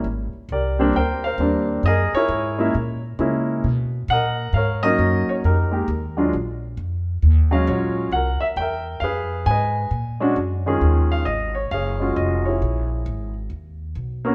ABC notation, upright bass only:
X:1
M:4/4
L:1/8
Q:"Swing" 1/4=134
K:Ebm
V:1 name="Upright bass" clef=bass
A,,, z =C,,2 =D,,2 E,,2 | G,, z A,,2 B,,2 D,2 | =B,,2 ^A,,2 _A,,2 ^F,, z | F,,2 E,,2 B,,,2 F,,2 |
E,,2 B,,,2 =C,, z =E,,2 | F,,2 A,,2 B,,2 ^F,,2 | E,,2 A,,,2 G,,,2 F,,,2 | B,,,2 A,,,2 E,,2 C,,2 |]